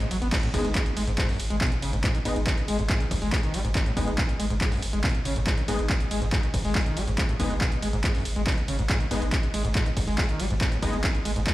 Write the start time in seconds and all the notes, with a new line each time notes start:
0.00 G#2, closed hi-hat
0.11 G#1 F#3, open hi-hat, ride
0.22 G#1 B3, closed hi-hat
0.32 G#2, kick, clap, closed hi-hat, ride, crash
0.43 A2, closed hi-hat
0.54 G#1 G#3 B3 D#4, kick, open hi-hat, ride
0.65 G#1 G#3, closed hi-hat
0.75 B2, kick, clap, closed hi-hat, ride
0.86 closed hi-hat
0.97 G#1 G#3, open hi-hat, ride
1.07 G#1 G#2, closed hi-hat
1.18 G#2, kick, clap, closed hi-hat, ride
1.29 F#2, open hi-hat
1.40 G#1, open hi-hat, ride
1.50 G#1 G#3, closed hi-hat
1.61 B2, kick, clap, closed hi-hat, ride
1.66 closed hi-hat
1.72 G#1, closed hi-hat
1.82 G#1 C#3, open hi-hat, ride
1.93 G#1 G#2, closed hi-hat
2.04 G#2, kick, clap, closed hi-hat, ride
2.15 D#3, closed hi-hat
2.25 G#1 G#2 G#3 B3 D#4, open hi-hat, ride
2.36 G#1, closed hi-hat
2.47 C#3, kick, clap, closed hi-hat, ride
2.58 closed hi-hat
2.68 G#1 G#3, open hi-hat, ride
2.79 G#1 G#2, closed hi-hat
2.90 G#2, kick, clap, closed hi-hat, ride
3.00 D#3, closed hi-hat
3.11 G#1 G#2, kick, open hi-hat, ride
3.22 G#1 G#3, open hi-hat
3.32 G#3, kick, clap, closed hi-hat, ride
3.38 closed hi-hat
3.43 D#3, closed hi-hat
3.54 G#1 G#3, open hi-hat, ride
3.65 G#1 G#2, closed hi-hat
3.75 G#2, kick, clap, closed hi-hat, ride
3.86 A2, closed hi-hat
3.97 G#1 G#3 B3 D#4, kick, open hi-hat, ride
4.07 G#1 G#3, closed hi-hat
4.18 B2, kick, clap, closed hi-hat
4.29 closed hi-hat
4.40 G#1 G#3, open hi-hat, ride
4.50 G#1 G#2, closed hi-hat
4.61 G#2, kick, clap, closed hi-hat, ride
4.72 F#2, open hi-hat
4.82 G#1, open hi-hat, ride
4.93 G#1 G#3, closed hi-hat
5.04 B2, kick, clap, closed hi-hat, ride
5.09 closed hi-hat
5.15 G#1, closed hi-hat
5.25 G#1 C#3, open hi-hat, ride
5.36 G#1 G#2, closed hi-hat
5.47 G#2, kick, clap, closed hi-hat, ride
5.58 D#3, closed hi-hat
5.68 G#1 G#2 G#3 B3 D#4, open hi-hat, ride
5.79 G#1, closed hi-hat
5.90 C#3, kick, clap, closed hi-hat, ride
6.00 closed hi-hat
6.11 G#1 G#3, open hi-hat, ride
6.22 G#1 G#2, closed hi-hat
6.32 G#2, kick, clap, closed hi-hat, ride
6.43 D#3, closed hi-hat
6.54 G#1 G#2, kick, open hi-hat, ride
6.65 G#1 G#3, open hi-hat
6.75 kick, clap, closed hi-hat, ride
6.81 closed hi-hat
6.86 D#3, closed hi-hat
6.97 G#1 G#3, open hi-hat, ride
7.07 G#1 G#2, closed hi-hat
7.18 G#2, kick, clap, closed hi-hat, ride
7.29 A2, closed hi-hat
7.40 G#1 G#3 B3 D#4, kick, open hi-hat, ride
7.50 G#1 G#3, closed hi-hat
7.61 B2, kick, clap, closed hi-hat, ride
7.72 closed hi-hat
7.82 G#1 G#3, open hi-hat, ride
7.93 G#1 G#2, closed hi-hat
8.04 G#2, kick, clap, closed hi-hat, ride
8.15 F#2, open hi-hat
8.25 G#1, open hi-hat, ride
8.36 G#1 G#3, closed hi-hat
8.47 B2, kick, clap, closed hi-hat, ride
8.52 closed hi-hat
8.57 G#1, closed hi-hat
8.68 G#1 C#3, open hi-hat, ride
8.79 G#1 G#2, closed hi-hat
8.90 G#2, kick, clap, closed hi-hat, ride
9.00 D#3, closed hi-hat
9.11 G#1 G#2 G#3 B3 D#4, open hi-hat, ride
9.22 G#1, closed hi-hat
9.32 C#3, kick, clap, closed hi-hat, ride
9.43 closed hi-hat
9.54 G#1 G#3, open hi-hat, ride
9.65 G#1 G#2, closed hi-hat
9.75 G#2, kick, clap, closed hi-hat
9.86 D#3, closed hi-hat
9.97 G#1 G#2, kick, open hi-hat, ride
10.07 G#1 G#3, open hi-hat
10.18 G#3, kick, clap, closed hi-hat, ride
10.24 closed hi-hat
10.29 D#3, closed hi-hat
10.40 G#1 G#3, open hi-hat, ride
10.50 G#1 G#2, closed hi-hat
10.61 G#2, kick, clap, closed hi-hat, ride
10.72 A2, closed hi-hat
10.82 G#1 G#3 B3 D#4, kick, open hi-hat, ride
10.93 G#1 G#3, closed hi-hat
11.04 B2, kick, clap, closed hi-hat, ride
11.15 closed hi-hat
11.25 G#1 G#3, open hi-hat, ride
11.36 G#1 G#2, closed hi-hat
11.47 G#2, kick, clap, closed hi-hat, ride